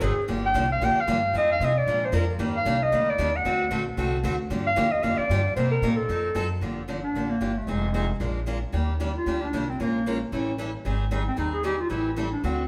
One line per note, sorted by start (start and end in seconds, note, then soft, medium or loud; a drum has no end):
0.00 0.16 G#1 medium
0.00 0.12 D#3 medium
0.00 0.12 F#3 medium
0.00 0.12 C4 medium
0.00 0.12 D#4 medium
0.00 0.12 G#4 medium
0.00 0.24 G#4 medium
0.17 muted upright bass stroke soft
0.28 0.54 G1 medium
0.28 0.47 D3 medium
0.28 0.47 F3 medium
0.28 0.47 A#3 medium
0.28 0.47 D4 medium
0.28 0.47 G4 medium
0.46 0.69 G5 loud
0.54 0.80 C2 medium
0.54 0.65 D3 medium
0.54 0.65 F3 medium
0.54 0.65 A#3 medium
0.54 0.66 D4 medium
0.54 0.66 G4 loud
0.72 0.86 F5 medium
0.81 0.95 A#1 medium
0.81 1.00 D3 medium
0.81 1.00 F3 medium
0.81 1.00 A#3 medium
0.81 1.00 D4 medium
0.81 1.00 G4 medium
0.81 1.02 G5 loud
0.96 muted upright bass stroke soft
1.01 1.36 F5 medium
1.07 1.33 G2 medium
1.07 1.18 D3 medium
1.07 1.18 F3 medium
1.07 1.18 A#3 medium
1.07 1.18 D4 medium
1.07 1.18 G4 medium
1.33 1.59 F2 medium
1.33 1.53 F3 medium
1.33 1.53 C4 medium
1.33 1.53 D#4 medium
1.33 1.53 G#4 medium
1.38 1.50 D#5 medium
1.52 1.66 F5 medium
1.60 1.86 C3 medium
1.60 1.71 F3 medium
1.60 1.71 C4 medium
1.60 1.72 D#4 medium
1.60 1.72 G#4 medium
1.64 1.79 D#5 medium
1.78 2.07 D5 medium
1.86 2.12 A#2 medium
1.86 2.06 F3 medium
1.86 2.06 G#3 medium
1.86 2.06 D4 medium
1.86 2.06 F4 medium
1.86 2.06 A#4 medium
2.05 2.15 C5 medium
2.12 2.38 F2 medium
2.12 2.23 F3 medium
2.12 2.23 G#3 medium
2.12 2.23 D4 medium
2.12 2.23 F4 medium
2.12 2.24 A#4 medium
2.16 2.34 A#4 medium
2.39 2.65 G2 medium
2.39 2.58 D#3 medium
2.39 2.58 G3 medium
2.39 2.58 A#3 medium
2.39 2.58 D4 medium
2.39 2.58 G4 medium
2.56 2.84 F5 medium
2.65 2.91 C2 medium
2.65 2.76 D#3 medium
2.65 2.76 G3 medium
2.65 2.76 A#3 medium
2.65 2.76 D4 medium
2.65 2.77 G4 medium
2.83 3.11 D#5 medium
2.92 3.17 D2 medium
2.92 3.11 D#3 medium
2.92 3.11 G3 medium
2.92 3.11 A#3 medium
2.92 3.11 D4 medium
2.92 3.11 G4 medium
3.10 3.38 D5 medium
3.18 3.44 D#2 medium
3.18 3.29 D#3 medium
3.18 3.29 G3 medium
3.18 3.29 A#3 medium
3.18 3.29 D4 medium
3.18 3.30 G4 medium
3.36 3.88 F#5 medium
3.45 3.70 D2 medium
3.45 3.63 D3 medium
3.45 3.63 A3 medium
3.45 3.64 C4 medium
3.45 3.64 F#4 medium
3.45 3.64 A4 medium
3.71 3.96 A#1 medium
3.71 3.81 D3 medium
3.71 3.81 A3 medium
3.71 3.82 C4 medium
3.71 3.82 F#4 medium
3.71 3.82 A4 medium
3.97 4.23 C2 medium
3.97 4.16 D3 medium
3.97 4.16 A3 medium
3.97 4.16 C4 medium
3.97 4.16 F#4 medium
3.97 4.17 A4 medium
4.24 4.49 D2 medium
4.24 4.34 D3 medium
4.24 4.34 A3 medium
4.24 4.35 C4 loud
4.24 4.35 F#4 medium
4.24 4.35 A4 loud
4.50 4.76 G2 medium
4.50 4.69 D3 medium
4.50 4.69 F3 medium
4.50 4.69 A#3 medium
4.50 4.69 D4 medium
4.50 4.69 G4 medium
4.67 4.93 F5 loud
4.76 5.02 D#2 medium
4.76 4.87 D3 medium
4.76 4.87 F3 medium
4.76 4.87 A#3 medium
4.76 4.87 D4 medium
4.76 4.87 G4 medium
4.91 5.05 D#5 medium
5.03 5.17 F2 medium
5.03 5.21 D3 medium
5.03 5.22 F3 medium
5.03 5.22 A#3 medium
5.03 5.22 D4 medium
5.03 5.22 G4 medium
5.03 5.19 F5 loud
5.17 5.55 D5 loud
5.17 muted upright bass stroke soft
5.29 5.55 G2 medium
5.29 5.40 D3 medium
5.29 5.41 F3 medium
5.29 5.41 A#3 medium
5.29 5.41 D4 medium
5.29 5.41 G4 medium
5.56 5.81 C3 medium
5.56 5.75 C3 medium
5.56 5.75 G3 medium
5.56 5.75 A#3 medium
5.56 5.75 D#4 medium
5.56 5.75 G4 medium
5.56 5.70 C5 medium
5.71 5.98 A#4 medium
5.82 6.08 A#2 medium
5.82 5.93 C3 medium
5.82 5.93 G3 medium
5.82 5.93 A#3 medium
5.82 5.93 D#4 medium
5.82 5.93 G4 medium
5.97 6.50 A4 medium
6.09 6.34 F2 medium
6.09 6.27 F3 medium
6.09 6.28 C4 medium
6.09 6.28 D#4 medium
6.09 6.28 A4 medium
6.35 6.61 F#2 medium
6.35 6.45 F3 medium
6.35 6.46 C4 medium
6.35 6.46 D#4 medium
6.35 6.46 A4 loud
6.61 7.04 G1 medium
6.61 6.80 D3 medium
6.61 6.80 F3 soft
6.61 6.81 A#3 medium
6.61 6.81 D4 medium
6.61 6.81 G4 medium
6.88 6.98 D3 medium
6.88 6.99 F3 medium
6.88 6.99 A#3 medium
6.88 6.99 D4 medium
6.88 6.99 G4 medium
7.03 7.32 D4 medium
7.14 7.37 A1 medium
7.14 7.33 D3 medium
7.14 7.34 F3 medium
7.14 7.34 A#3 medium
7.14 7.34 D4 medium
7.14 7.34 G4 medium
7.30 7.60 A#3 medium
7.40 7.63 G1 medium
7.40 7.51 D3 medium
7.40 7.51 F3 medium
7.40 7.52 A#3 medium
7.40 7.52 D4 medium
7.40 7.52 G4 medium
7.58 7.71 A3 medium
7.67 8.10 F1 medium
7.67 7.86 F3 medium
7.67 8.22 G#3 medium
7.67 7.86 C4 medium
7.67 7.87 D#4 medium
7.67 7.87 G#4 medium
7.94 8.04 F3 medium
7.94 8.05 C4 medium
7.94 8.05 D#4 medium
7.94 8.05 G#4 medium
8.20 8.63 A#1 medium
8.20 8.39 F3 medium
8.20 8.39 G#3 medium
8.20 8.39 D4 medium
8.20 8.39 F4 medium
8.20 8.39 A#4 medium
8.46 8.57 F3 medium
8.46 8.57 G#3 medium
8.46 8.57 D4 medium
8.46 8.58 F4 medium
8.46 8.58 A#4 medium
8.72 9.16 D#2 medium
8.72 8.92 D#3 medium
8.72 8.92 G3 medium
8.72 8.92 A#3 medium
8.72 8.92 D4 medium
8.72 8.92 G4 medium
9.00 9.10 D#3 medium
9.00 9.11 G3 medium
9.00 9.11 A#3 medium
9.00 9.11 D4 medium
9.00 9.11 G4 medium
9.16 9.43 F4 medium
9.26 9.49 D2 medium
9.26 9.45 D#3 medium
9.26 9.45 G3 medium
9.26 9.45 A#3 medium
9.26 9.46 D4 medium
9.26 9.46 G4 medium
9.42 9.71 D4 medium
9.53 9.75 C2 medium
9.53 9.63 D#3 medium
9.53 9.64 G3 medium
9.53 9.64 A#3 medium
9.53 9.64 D4 medium
9.53 9.64 G4 medium
9.69 9.80 C4 medium
9.80 10.22 A#1 medium
9.80 9.98 F3 medium
9.80 9.98 G#3 medium
9.80 10.30 A#3 medium
9.80 9.98 C#4 medium
9.80 9.98 F4 medium
9.80 9.99 A#4 medium
10.06 10.16 F3 medium
10.06 10.17 G#3 medium
10.06 10.17 C#4 medium
10.06 10.17 F4 medium
10.06 10.17 A#4 medium
10.32 10.75 A1 medium
10.32 10.51 E3 medium
10.32 10.51 G3 medium
10.32 10.51 C#4 medium
10.32 10.51 E4 medium
10.32 10.51 A4 medium
10.58 10.69 E3 medium
10.58 10.69 G3 medium
10.58 10.69 C#4 medium
10.58 10.69 E4 medium
10.58 10.70 A4 medium
10.85 11.27 G#1 medium
10.85 11.03 D#3 medium
10.85 11.04 G3 medium
10.85 11.04 C4 medium
10.85 11.04 D#4 medium
10.85 11.04 G#4 medium
11.11 11.22 D#3 medium
11.11 11.22 G3 medium
11.11 11.22 C4 medium
11.11 11.22 D#4 medium
11.11 11.22 G#4 medium
11.27 11.38 C4 medium
11.36 11.80 D#2 medium
11.36 11.56 D#3 medium
11.36 11.56 G3 medium
11.36 11.56 C4 medium
11.36 11.56 D#4 medium
11.36 11.55 D#4 medium
11.36 11.56 G#4 medium
11.54 11.64 G#4 medium
11.63 11.74 D#3 medium
11.63 11.75 G3 medium
11.63 11.75 C4 medium
11.63 11.75 D#4 medium
11.63 11.82 G4 medium
11.63 11.75 G#4 medium
11.81 11.90 F4 medium
11.89 12.33 A1 medium
11.89 12.09 E3 medium
11.89 12.09 G3 medium
11.89 12.09 C4 medium
11.89 12.15 E4 medium
11.89 12.09 E4 medium
11.89 12.09 A4 medium
12.16 12.27 E3 medium
12.16 12.27 G3 medium
12.16 12.27 C4 medium
12.16 12.28 E4 medium
12.16 12.28 A4 medium
12.32 12.46 D4 medium
12.43 12.68 D2 medium
12.43 12.62 D3 medium
12.43 12.62 A3 medium
12.43 12.62 C4 medium
12.43 12.68 C4 medium
12.43 12.62 F#4 medium
12.43 12.62 A4 medium